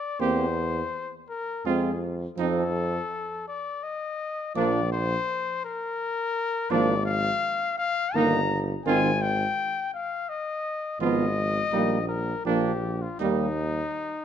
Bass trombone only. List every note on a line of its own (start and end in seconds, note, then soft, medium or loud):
0.21 0.81 E2 medium
1.66 2.26 F2 medium
2.38 2.99 F2 medium
4.56 5.16 A#1 medium
6.71 7.30 G#1 medium
8.15 8.74 G1 medium
8.86 9.45 G#1 medium
11.00 11.60 G#1 medium
11.72 12.33 A#1 medium
12.46 13.07 A#1 medium
13.21 13.84 D#2 medium